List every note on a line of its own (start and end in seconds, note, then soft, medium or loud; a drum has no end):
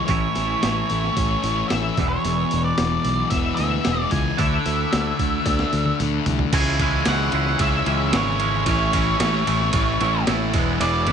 0.00 0.35 E3 medium
0.00 0.10 E4 medium
0.06 0.27 A1 medium
0.06 1.43 A2 medium
0.06 1.99 E3 medium
0.06 1.96 A3 medium
0.06 1.68 C#5 medium
0.06 kick medium
0.06 open hi-hat medium
0.10 1.97 C#4 loud
0.10 2.00 E4 loud
0.35 0.54 A1 medium
0.35 0.63 E3 medium
0.35 snare soft
0.35 open hi-hat soft
0.63 0.82 A1 medium
0.63 1.44 E3 medium
0.63 snare loud
0.63 open hi-hat medium
0.90 1.09 A1 medium
0.90 1.70 A3 medium
0.90 open hi-hat soft
1.03 snare soft
1.17 1.35 A1 medium
1.17 1.98 C#4 medium
1.17 kick medium
1.17 open hi-hat medium
1.44 1.62 A1 medium
1.44 2.79 E3 medium
1.44 open hi-hat medium
1.68 1.89 A1 medium
1.68 1.98 A3 medium
1.68 2.08 E5 medium
1.68 snare medium
1.68 open hi-hat medium
1.97 2.16 E1 medium
1.97 2.24 E2 medium
1.97 4.11 B2 medium
1.97 4.37 E3 medium
1.97 4.12 G#3 medium
1.97 4.12 B3 medium
1.97 4.40 E4 medium
1.97 kick medium
1.97 open hi-hat soft
2.09 2.64 C#5 medium
2.25 2.43 E1 medium
2.25 3.59 E2 medium
2.25 open hi-hat medium
2.51 2.71 E1 medium
2.51 3.86 B2 medium
2.51 open hi-hat medium
2.64 3.30 D5 medium
2.78 2.97 E1 medium
2.78 3.59 E3 medium
2.78 snare loud
2.78 open hi-hat medium
3.05 3.23 B1 medium
3.05 3.85 G#3 medium
3.05 open hi-hat soft
3.30 3.50 E1 medium
3.30 4.39 B3 medium
3.30 3.54 E5 medium
3.30 kick medium
3.30 open hi-hat medium
3.56 3.77 D2 medium
3.56 4.01 E5 medium
3.56 open hi-hat soft
3.60 4.13 E3 medium
3.85 4.05 E1 medium
3.85 4.40 G#3 medium
3.85 snare medium
3.85 open hi-hat medium
4.01 4.13 D5 medium
4.11 4.31 C#2 medium
4.11 4.39 E3 medium
4.11 4.40 G#5 medium
4.11 kick medium
4.11 open hi-hat medium
4.38 4.57 D2 medium
4.38 4.91 D3 medium
4.38 6.51 A3 medium
4.38 6.52 D4 loud
4.38 6.52 E4 loud
4.38 5.96 E5 medium
4.38 kick loud
4.38 open hi-hat medium
4.66 4.84 D2 medium
4.66 5.18 A3 medium
4.66 open hi-hat medium
4.92 5.11 D2 medium
4.92 5.72 D3 medium
4.92 snare loud
4.92 open hi-hat medium
5.19 5.37 D2 medium
5.19 5.99 A3 medium
5.19 kick medium
5.19 open hi-hat medium
5.46 5.64 D2 medium
5.46 6.53 D4 medium
5.46 kick medium
5.46 snare medium
5.46 open hi-hat medium
5.59 snare medium
5.73 5.91 D2 medium
5.73 6.26 D3 medium
5.73 open hi-hat soft
5.86 high tom medium
6.00 6.19 D2 medium
6.00 6.53 A3 medium
6.00 open hi-hat medium
6.00 mid tom medium
6.26 6.45 C2 medium
6.26 6.52 D3 medium
6.26 floor tom medium
6.26 open hi-hat medium
6.39 floor tom medium
6.52 7.04 C#2 medium
6.52 6.78 C#3 medium
6.52 6.79 E3 loud
6.52 6.79 G#3 medium
6.52 6.80 C#4 medium
6.52 6.81 E4 loud
6.52 7.08 G#5 loud
6.52 kick loud
6.52 crash loud
6.52 ride medium
6.79 7.05 C#3 medium
6.79 7.06 E3 medium
6.79 7.06 G#3 medium
6.79 7.08 C#4 medium
6.79 7.08 E4 medium
6.79 kick medium
6.79 ride medium
7.05 7.32 C#2 medium
7.05 7.31 C#3 medium
7.05 7.32 E3 medium
7.05 7.32 G#3 medium
7.05 7.32 C#4 medium
7.05 7.34 E4 medium
7.05 7.58 F#5 medium
7.05 snare loud
7.05 ride medium
7.32 7.59 C#2 medium
7.32 7.58 C#3 medium
7.32 7.60 E3 medium
7.32 7.60 G#3 medium
7.32 7.60 C#4 loud
7.32 7.61 E4 medium
7.32 ride medium
7.46 snare soft
7.59 7.85 C#2 medium
7.59 7.85 C#3 medium
7.59 7.87 E3 medium
7.59 7.86 G#3 medium
7.59 7.87 C#4 medium
7.59 7.88 E4 medium
7.59 8.16 E5 loud
7.59 kick loud
7.59 ride medium
7.86 8.12 C#2 medium
7.86 8.11 C#3 medium
7.86 8.13 E3 medium
7.86 8.12 G#3 medium
7.86 8.13 C#4 medium
7.86 8.14 E4 loud
7.86 ride medium
8.12 8.64 G#1 medium
8.12 8.38 C#3 loud
8.12 8.40 E3 medium
8.12 8.40 G#3 medium
8.12 8.40 C#4 loud
8.12 8.42 E4 loud
8.12 8.65 C#5 medium
8.12 snare loud
8.12 ride medium
8.40 8.65 C#3 medium
8.40 8.67 E3 medium
8.40 8.66 G#3 medium
8.40 8.66 C#4 medium
8.40 8.68 E4 medium
8.40 ride medium
8.66 9.17 A1 medium
8.66 8.92 A2 medium
8.66 8.94 E3 loud
8.66 8.93 A3 medium
8.66 8.94 C#4 loud
8.66 8.95 E4 loud
8.66 10.23 C#5 medium
8.66 kick medium
8.66 ride medium
8.93 9.19 A2 medium
8.93 9.20 E3 medium
8.93 9.20 A3 medium
8.93 9.21 C#4 medium
8.93 9.22 E4 medium
8.93 kick medium
8.93 ride medium
9.20 9.46 A1 loud
9.20 9.46 A2 medium
9.20 9.48 E3 medium
9.20 9.47 A3 medium
9.20 9.48 C#4 medium
9.20 9.49 E4 medium
9.20 snare loud
9.20 ride medium
9.47 9.73 A1 medium
9.47 9.73 A2 medium
9.47 9.75 E3 medium
9.47 9.74 A3 medium
9.47 9.75 C#4 medium
9.47 9.76 E4 medium
9.47 ride medium
9.60 snare soft
9.73 9.99 A1 medium
9.73 10.00 A2 medium
9.73 10.02 E3 medium
9.73 10.01 A3 loud
9.73 10.02 C#4 medium
9.73 10.03 E4 medium
9.73 kick loud
9.73 ride medium
10.01 10.26 A1 medium
10.01 10.26 A2 medium
10.01 10.28 E3 medium
10.01 10.27 A3 medium
10.01 10.28 C#4 loud
10.01 10.29 E4 loud
10.01 ride medium
10.27 10.53 A1 medium
10.27 10.52 A2 medium
10.27 10.56 E3 medium
10.27 10.53 A3 loud
10.27 10.53 C#4 loud
10.27 10.56 E4 loud
10.27 snare loud
10.27 ride medium
10.54 10.79 E1 medium
10.54 10.80 E2 medium
10.54 10.81 B2 medium
10.54 10.82 E3 medium
10.54 10.82 G#3 medium
10.54 10.82 B3 loud
10.54 10.83 E4 medium
10.54 kick loud
10.54 ride medium
10.81 11.12 E1 loud
10.81 11.06 E2 loud
10.81 11.07 B2 loud
10.81 11.08 E3 medium
10.81 11.08 G#3 loud
10.81 11.09 B3 loud
10.81 11.09 E4 loud
10.81 11.12 D5 medium
10.81 ride medium
11.07 11.12 E2 medium
11.07 11.12 B2 medium
11.07 11.12 E3 medium
11.07 11.12 G#3 medium
11.07 11.12 B3 medium
11.07 11.12 E4 loud
11.07 kick medium
11.07 ride medium